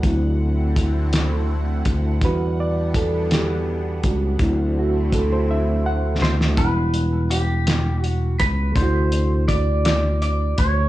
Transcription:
Already playing: F#5
0.03 D2 D3 F#3 A3 C4 E4, kick, closed hi-hat
0.76 kick, closed hi-hat
1.13 snare, closed hi-hat
1.85 D2, kick, closed hi-hat
2.21 E2 E3 G3 B3 D4 F#4 B4, kick, closed hi-hat
2.60 D5
2.94 A4, kick, closed hi-hat
3.31 G4, snare, closed hi-hat
4.03 C#2 G3 D4 F#4, kick, closed hi-hat
4.39 D2 D3 F#3 A3 C4 E4, kick, closed hi-hat
4.79 F#4
5.12 A4, kick, closed hi-hat
5.32 C5
5.51 E5
5.86 F#5
6.21 D2 C5, snare
6.41 snare
6.54 E1 G3 B3 B4, kick, closed hi-hat
6.59 D4 E4
6.64 F#5
6.94 closed hi-hat
7.31 G4, closed hi-hat
7.67 snare, closed hi-hat
8.01 F#4, closed hi-hat
8.40 C#2 B4, kick, closed hi-hat
8.72 D2 C3 A3 C5, kick, closed hi-hat
8.77 D4 E4
8.82 F#4
9.12 closed hi-hat
9.48 D5, kick, closed hi-hat
9.85 D5, snare, closed hi-hat
10.22 D5, closed hi-hat
10.58 D2 C#5, kick, closed hi-hat

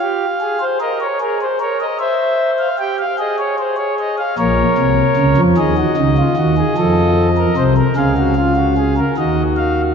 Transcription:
Already playing: F5
0.01 G4
0.41 G#4
0.60 C5
0.81 A#4 D#5
1.01 C#5
1.21 G#4 A#4
1.41 C5
1.60 A#4 C#5
1.81 D#5
2.00 C5 E5
2.59 F5
2.79 G4 G5
2.99 F5
3.19 G#4 D#5
3.39 C#5
3.58 C5
3.77 C#5
3.99 D#5
4.18 F5
4.38 A#1 A#2 A#4 C#5
4.78 C2 C3
5.17 C#2 C#3
5.37 F2 F3
5.57 D#2 D#3 G#4 D#5
5.78 F#4
5.97 C#2 C#3 D#4
6.18 F4
6.37 D#2 D#3 F#4
6.57 G#4
6.77 F2 F3 A4
7.37 A#4
7.57 C2 C3 C5
7.77 A#4
7.96 C#2 C#3 G#4 F5
8.17 F#4
8.36 F4
8.56 F#4
8.77 G#4
8.97 A#4
9.17 D#2 D#3 F#4 D#5
9.57 F5

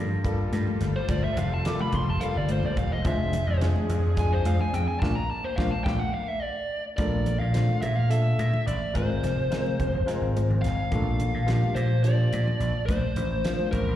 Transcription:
Already playing: G2 G3 F4 A4
0.24 G3 A#3 F4 A4, kick, closed hi-hat
0.53 G2, snare, closed hi-hat, high conga, low conga
0.67 low conga
0.80 G1, snare, closed hi-hat
0.96 C5
1.09 G1 D5, kick, closed hi-hat, high conga
1.24 E5
1.37 F1 F5, closed hi-hat, low conga
1.54 A5
1.65 G3 A#3 F4 A4 D6, snare, closed hi-hat
1.79 B5, high conga
1.92 F1 C6, kick, closed hi-hat, low conga
2.07 F1 A5
2.20 G3 A#3 F4 A4 F5, muted slap bass stroke, closed hi-hat, low conga
2.36 G1 D5
2.49 C5, closed hi-hat, high conga, low conga
2.63 G1 D5, low conga
2.77 E1 F5, kick, closed hi-hat
2.93 D#5
3.04 F1 F3 G#3 D4 F4 G#4 C5 E5, kick, closed hi-hat, high conga
3.33 closed hi-hat, low conga
3.47 F2
3.61 G#3 D4 F4 G#4, snare, closed hi-hat, low conga
3.75 muted slap bass stroke, high conga
3.89 F2, closed hi-hat, low conga
4.16 G#3 D4 F4 G#4 G#5, kick, closed hi-hat, low conga
4.33 C5
4.45 F2 F5, closed hi-hat, high conga, low conga
4.59 G#5, low conga
4.73 F2 G5, closed hi-hat
4.88 G#5
5.00 A#1 A3 A#3 D4 F4 A5, kick, snare, high conga
5.15 A#5
5.30 A5
5.44 C5
5.56 A#1 A#3 D4 F4 F5, kick, snare, high conga
5.71 A5
5.84 A#1 A#3 D4 F4 G5, kick, snare, high conga
6.00 F#5
6.13 F5
6.28 E5
6.42 D5
6.97 A#1 D4 F4 A4 A#4 D5, kick, closed hi-hat, high conga
7.26 closed hi-hat, low conga
7.40 A#2 F5
7.53 A3 D4 F4 C5, snare, closed hi-hat
7.68 muted slap bass stroke, high conga
7.82 A#2 E5, closed hi-hat, low conga
7.96 F5
8.09 A3 D4 F4 A4 E5, closed hi-hat, low conga
8.39 A#2, closed hi-hat, high conga, low conga
8.54 low conga
8.67 A1 D5, closed hi-hat
8.94 G#1 G#3 C4 F4 A#4 C5, kick, closed hi-hat, high conga
9.23 F1, snare, closed hi-hat, low conga
9.50 G#3 C4 F4 A#4, snare, closed hi-hat, low conga
9.67 high conga
9.80 F1, kick, closed hi-hat, low conga
9.93 F1
10.06 G#3 C4 F4 A#4, muted slap bass stroke, snare, closed hi-hat, low conga
10.21 G#1
10.37 closed hi-hat, high conga, low conga
10.50 G#1, low conga
10.62 G#1 F5, snare, closed hi-hat
10.91 A#1 F3 A#3 D4 A4, kick, closed hi-hat, high conga
11.20 closed hi-hat, low conga
11.34 A#2
11.46 F3 A#3 D4 G4, snare, closed hi-hat
11.62 muted slap bass stroke, high conga
11.75 A#2 C5, closed hi-hat, low conga
12.03 F3 A#3 D4 G4 D5, closed hi-hat
12.33 A#2, closed hi-hat, high conga, low conga
12.48 low conga
12.60 A#1, closed hi-hat
12.86 A#1 C5, kick, closed hi-hat, high conga
13.16 A1, closed hi-hat, low conga
13.31 low conga
13.45 F3 A#3 D4 F4, snare, closed hi-hat
13.59 high conga
13.71 A1 A#4, kick, closed hi-hat, low conga
13.87 A1, low conga

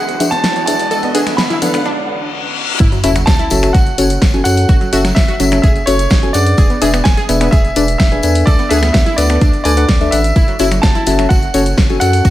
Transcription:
Already playing: E1 E3 G#3 B3 D4 F#4 G#4 F#5, riser
0.09 closed hi-hat, tambourine
0.20 D4 G#4 B4 E5, open hi-hat, tambourine, low conga
0.31 A5, closed hi-hat, high conga
0.44 snare, closed hi-hat, tambourine
0.56 closed hi-hat, tambourine
0.66 E2 D4 G#4 B4 E5 A5, open hi-hat, tambourine
0.79 open hi-hat, tambourine
0.91 D2 D3 C#4 F#4 A4, closed hi-hat, tambourine
1.03 B3, closed hi-hat, high conga
1.15 D2 D4 G#4 A4 B4 F#5, open hi-hat, tambourine
1.27 B3, finger snap, snare, closed hi-hat, tambourine
1.37 D2 B3 B5, snare, closed hi-hat, tambourine
1.50 E4, closed hi-hat, tambourine
1.62 D2 B3 D4 A4 B4 F#5, open hi-hat, tambourine, high conga, low conga
1.74 B3 D4 A4 B4 F#5, finger snap, closed hi-hat, tambourine
1.86 D4, reverse cymbal
2.80 F#1 E4, kick, closed hi-hat, tambourine, sub drop
2.92 F#3, closed hi-hat, tambourine
3.04 F#1 C#4 E4 F#4 A4 E5, open hi-hat, tambourine
3.16 F#3, finger snap, closed hi-hat, tambourine
3.26 F#1 F#3 A5, kick, snare, closed hi-hat, tambourine
3.39 E4, closed hi-hat, tambourine
3.50 F#1 F#3 C#4 F#4 A4 E5, open hi-hat, tambourine
3.63 F#3 C#4 F#4 A4 E5, finger snap, closed hi-hat, tambourine
3.73 F#1 F#4 F#5, kick, closed hi-hat, tambourine
3.86 closed hi-hat, tambourine
3.98 F#1 C#4 F#4 A4 C#5, open hi-hat, tambourine
4.10 closed hi-hat, tambourine
4.22 F#1, kick, snare, closed hi-hat, tambourine
4.34 C#4 F#4 A4 G#5, closed hi-hat, tambourine
4.44 F#2 C#4 F#4 A4 F#5, open hi-hat, tambourine
4.57 open hi-hat, tambourine
4.69 F#1 F#4, kick, closed hi-hat, tambourine
4.81 F#3, closed hi-hat, tambourine
4.93 F#1 C#4 F#4 A4 E5, open hi-hat, tambourine
5.05 F#3, finger snap, snare, closed hi-hat, tambourine
5.15 F#1 F#3 E5, kick, snare, closed hi-hat, tambourine
5.28 F#4, closed hi-hat, tambourine
5.40 F#1 F#3 C#4 F#4 A4 E5, open hi-hat, tambourine
5.52 F#3 C#4 F#4 A4 E5, finger snap, closed hi-hat
5.62 F#1 G#4 E5, kick, closed hi-hat, tambourine
5.76 closed hi-hat, tambourine
5.86 F#1 C#4 F#4 A4 C#5, open hi-hat, tambourine
5.99 closed hi-hat, tambourine
6.10 F#1, kick, snare, closed hi-hat, tambourine
6.23 C#4 F#4 A4 G#5, closed hi-hat, tambourine
6.33 F#2 D4 G#4 B4 D5 F#5, open hi-hat, tambourine
6.46 closed hi-hat
6.57 E1 G#4, kick, closed hi-hat, tambourine
6.70 B3, closed hi-hat, tambourine
6.82 E1 D4 G#4 B4 E5, open hi-hat, tambourine
6.94 B3, finger snap, closed hi-hat, tambourine
7.04 E1 B3 G#5, kick, snare, closed hi-hat, tambourine
7.17 G#4, closed hi-hat, tambourine
7.29 E1 B3 D4 G#4 B4 E5, open hi-hat, tambourine
7.41 B3 D4 G#4 B4 E5, finger snap, closed hi-hat, tambourine
7.51 E1 G#4 E5, kick, closed hi-hat, tambourine
7.64 closed hi-hat, tambourine
7.76 E1 D4 G#4 B4 D5, open hi-hat, tambourine
7.88 closed hi-hat, tambourine
7.98 E1 E5, kick, snare, closed hi-hat, tambourine
8.12 D4 G#4 B4 G#5, closed hi-hat, tambourine
8.23 E2 D4 A4 B4 G#5, open hi-hat, tambourine
8.35 open hi-hat, tambourine
8.46 D2 A4 D5, kick, closed hi-hat, tambourine
8.59 B3, closed hi-hat, tambourine
8.69 D2 D4 G#4 A4 B4 E5 F#5, open hi-hat, tambourine
8.82 B3, finger snap, snare, closed hi-hat, tambourine
8.93 D2 B3 E5, kick, snare, closed hi-hat, tambourine
9.06 E4, closed hi-hat, tambourine
9.16 D2 B3 D4 A4 B4 D5 F#5, open hi-hat, tambourine
9.30 B3 D4 A4 B4 F#5, finger snap, closed hi-hat
9.41 D2 D4, kick, closed hi-hat, tambourine
9.53 closed hi-hat, tambourine
9.64 D2 D4 A4 B4 D5 G#5, open hi-hat, tambourine
9.77 D4 A4 B4 F#5, closed hi-hat, tambourine
9.88 D2, kick, snare, closed hi-hat, tambourine
10.01 D4 A4 B4 E5, closed hi-hat, tambourine
10.11 A1 D4 A4 B4 E5 F#5, open hi-hat, tambourine
10.24 closed hi-hat, tambourine
10.36 F#1 E4, kick, closed hi-hat, tambourine
10.48 F#3, closed hi-hat, tambourine
10.59 F#1 C#4 E4 F#4 A4 E5, open hi-hat, tambourine
10.72 F#3, finger snap, closed hi-hat, tambourine
10.82 F#1 F#3 A5, kick, snare, closed hi-hat, tambourine
10.95 E4, closed hi-hat, tambourine
11.06 F#1 F#3 C#4 F#4 A4 E5, open hi-hat, tambourine
11.19 F#3 C#4 F#4 A4 E5, finger snap, closed hi-hat, tambourine
11.29 F#1 F#4 F#5, kick, closed hi-hat, tambourine
11.42 closed hi-hat, tambourine
11.54 F#1 C#4 F#4 A4 C#5, open hi-hat, tambourine
11.66 closed hi-hat, tambourine
11.77 F#1, kick, snare, closed hi-hat, tambourine
11.89 C#4 F#4 A4 G#5, closed hi-hat, tambourine
12.00 F#2 C#4 F#4 A4 F#5, open hi-hat, tambourine
12.13 open hi-hat, tambourine
12.25 F#1 F#4, kick, closed hi-hat, tambourine

